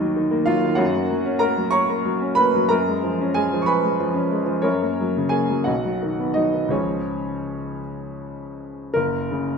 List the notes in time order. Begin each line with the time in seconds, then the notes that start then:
Already playing: D#2 D#3 A#3 D#4 A#4 D#5
0.00 F#3
0.16 D#3
0.31 A#3
0.46 F#3 F4 F5
0.65 D#3
0.75 F#2 F#4 C#5 F#5
0.95 A#3
1.11 F#3
1.26 C#4
1.39 A#3 A#4 A#5
1.57 F#3
1.71 C#5 A#5 C#6
1.89 A#3
2.05 F#3
2.22 C#4
2.35 A#3 B4 B5
2.55 F#3
2.69 F#2 A#4 A#5
2.88 G#3
3.04 F3
3.21 C#4
3.34 G#3 G#4 G#5
3.53 F3
3.62 C#6
3.66 B4 G#5 B5
3.84 G#3
4.00 F3
4.14 C#4
4.31 G#3
4.46 F3
4.62 F#2 C#4 A#4 C#5
4.82 A#3
5.01 F#3
5.17 C#3
5.29 A#3 G#4 G#5
5.50 F#3
5.64 B1 F#4 D#5 F#5
5.85 F#3
6.03 D#3
6.20 B3
6.34 F#3 D#4 D#5
6.54 D#3
6.69 C#2 C#3 F3 G#3 C#4 G#4 C#5
8.94 F#1 A#4
9.31 C#3